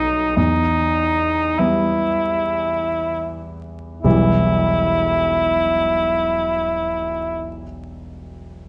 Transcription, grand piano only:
0.00 0.33 B1 soft
0.00 0.33 F#3 soft
0.00 0.33 A3 soft
0.00 0.33 B3 soft
0.37 1.55 E2 soft
1.59 4.00 E3 soft
1.59 4.00 G3 soft
1.59 4.01 B3 soft
4.04 7.62 E1 soft
4.04 7.63 B1 soft
4.04 7.63 E3 soft
4.04 7.63 G3 soft
4.04 7.64 B3 soft
4.04 7.64 E4 soft

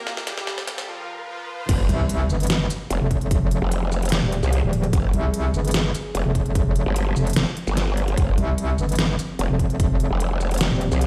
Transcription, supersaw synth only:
0.00 0.19 A#3 medium
0.00 0.19 A#4 loud
0.27 0.80 G3 medium
0.27 0.80 G4 loud
0.88 1.23 F3 medium
0.88 1.23 F4 medium
1.28 1.63 F3 medium
1.28 1.63 F4 medium

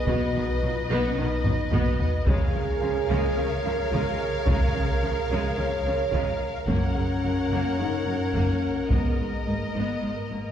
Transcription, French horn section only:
0.08 0.61 F#4 medium
0.62 0.90 F4 medium
0.92 1.04 D#4 medium
1.06 1.19 C#4 medium
1.20 1.74 D#4 loud
1.73 2.11 F#4 medium
2.28 3.35 G#4 loud
3.36 3.91 A#4 loud
3.92 4.10 F4 medium
4.12 4.28 G#4 medium
4.29 4.47 G#4 medium
4.46 4.74 A#4 medium
4.75 5.56 A#4 loud
5.56 6.40 C#5 medium
6.69 7.75 C#4 loud
7.78 8.06 D#4 medium
8.07 8.90 C#4 medium
8.91 10.52 G#3 medium

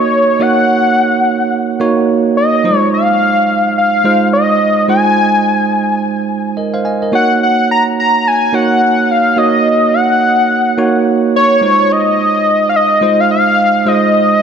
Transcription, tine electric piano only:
0.00 0.40 A#3 medium
0.00 0.40 D#4 medium
0.00 0.40 F#4 medium
0.00 0.41 C#5 medium
0.40 1.28 A#3 medium
0.40 1.28 D#4 medium
0.40 1.28 F#4 medium
0.40 1.28 C#5 medium
1.80 2.45 A#3 medium
1.80 2.46 D#4 medium
1.80 2.46 F#4 medium
1.80 2.46 C#5 loud
2.64 2.72 F#3 medium
2.64 3.52 D#4 medium
2.64 3.52 F4 medium
2.64 3.53 C5 medium
2.71 3.55 G#3 medium
4.04 4.70 G#3 medium
4.04 4.70 D#4 medium
4.04 4.70 F4 medium
4.04 4.70 C5 medium
4.88 5.76 G#3 medium
4.88 5.76 D#4 medium
4.88 5.76 F4 medium
4.88 5.77 C5 medium
6.57 6.73 A#4 medium
6.57 6.73 D#5 medium
6.74 6.84 C5 medium
6.74 6.84 F5 medium
6.85 7.01 D#5 medium
6.85 7.01 G#5 medium
7.02 7.29 A#4 medium
7.02 7.29 D#5 medium
7.12 8.00 A#3 medium
7.12 8.01 D#4 medium
7.12 8.01 F#4 medium
7.12 8.01 C#5 medium
8.53 9.18 A#3 medium
8.53 9.18 D#4 medium
8.53 9.19 F#4 medium
8.53 9.19 C#5 medium
9.36 10.25 A#3 medium
9.36 10.25 D#4 medium
9.36 10.25 F#4 medium
9.36 10.25 C#5 medium
10.78 11.43 A#3 medium
10.78 11.43 D#4 medium
10.78 11.43 F#4 medium
10.78 11.43 C#5 loud
11.61 12.49 G#3 medium
11.61 12.49 D#4 medium
11.61 12.50 F4 medium
11.61 12.50 C5 medium
13.01 13.67 G#3 medium
13.01 13.67 D#4 medium
13.01 13.67 F4 medium
13.01 13.67 C5 medium
13.86 14.42 G#3 medium
13.86 14.42 D#4 medium
13.86 14.42 F4 medium
13.86 14.42 C5 medium

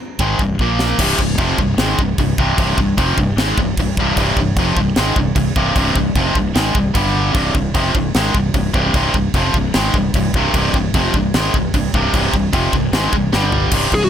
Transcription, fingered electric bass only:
0.20 0.39 G#1 loud
0.39 0.58 C1 medium
0.59 0.96 A#1 medium
0.98 1.18 C1 medium
1.19 1.38 C1 medium
1.38 1.57 F1 loud
1.58 1.77 C1 medium
1.77 1.97 G#1 loud
1.99 2.17 C1 medium
2.18 2.37 C1 medium
2.38 2.57 C1 loud
2.58 2.77 C1 loud
2.78 2.97 C1 medium
2.97 3.16 F1 loud
3.17 3.36 C1 medium
3.37 3.56 G#1 medium
3.57 3.76 C1 medium
3.77 3.96 C1 medium
3.97 4.16 C1 loud
4.16 4.35 C1 loud
4.37 4.55 C1 medium
4.56 4.75 F1 loud
4.76 4.95 C1 medium
4.97 5.15 G#1 loud
5.16 5.35 C1 medium
5.36 5.55 C1 medium
5.56 5.75 C1 loud
5.76 5.94 C1 medium
5.95 6.14 C1 medium
6.15 6.34 F1 loud
6.35 6.54 C1 medium
6.56 6.74 G#1 loud
6.75 6.94 C1 medium
6.95 7.32 G1 loud
7.35 7.54 C1 loud
7.54 7.74 C1 medium
7.75 7.94 F1 loud
7.95 8.14 C1 medium
8.15 8.34 G#1 loud
8.34 8.53 C1 medium
8.54 8.73 C1 medium
8.74 8.93 C1 loud
8.94 9.13 C1 loud
9.13 9.33 C1 medium
9.34 9.53 F1 loud
9.54 9.73 C1 medium
9.75 9.93 G#1 loud
9.94 10.13 C1 medium
10.14 10.33 C1 medium
10.33 10.53 C1 loud
10.53 10.73 C1 loud
10.74 10.93 C1 medium
10.94 11.13 F1 loud
11.13 11.33 C1 medium
11.35 11.53 G#1 loud
11.54 11.73 C1 medium
11.74 11.93 C1 medium
11.93 12.13 C1 loud
12.13 12.33 C1 medium
12.33 12.52 C1 medium
12.53 12.72 F1 loud
12.73 12.92 C1 medium
12.93 13.12 G#1 loud
13.12 13.32 C1 medium
13.34 13.71 G1 loud
13.72 13.87 C1 loud
13.92 14.07 C1 medium

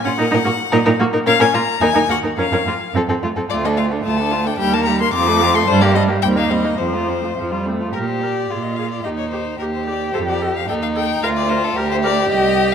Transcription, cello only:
0.06 0.11 A#2 medium
0.19 0.25 A#2 loud
0.33 0.38 A#2 medium
0.46 0.51 A#2 medium
0.73 0.78 A#2 loud
0.86 0.92 A#2 medium
1.00 1.06 A#2 medium
1.13 1.19 A#2 medium
1.26 1.32 A#2 loud
1.40 1.46 A#2 medium
1.53 1.59 A#2 medium
1.81 1.86 D#2 loud
1.95 2.01 D#2 medium
2.09 2.14 D#2 medium
2.23 2.29 D#2 medium
2.37 2.43 F2 medium
2.51 2.57 F2 medium
2.65 2.71 F2 medium
2.94 3.00 F2 medium
3.08 3.14 F2 medium
3.22 3.28 F2 medium
3.36 3.42 F2 medium
3.50 3.99 D2 medium
4.05 4.53 D2 medium
4.59 5.08 D#2 medium
5.14 5.62 F2 loud
5.68 6.16 G2 loud
6.22 6.73 D#2 medium
6.79 7.30 F2 medium
7.37 7.88 F2 medium
7.95 8.43 A#2 medium
8.50 8.98 A#2 soft
9.05 9.53 D#2 medium
9.59 10.08 D#2 medium
10.14 10.62 F2 medium
10.69 11.17 D#2 medium
11.22 11.70 D2 medium
11.75 12.24 D2 medium
12.30 12.74 C2 medium

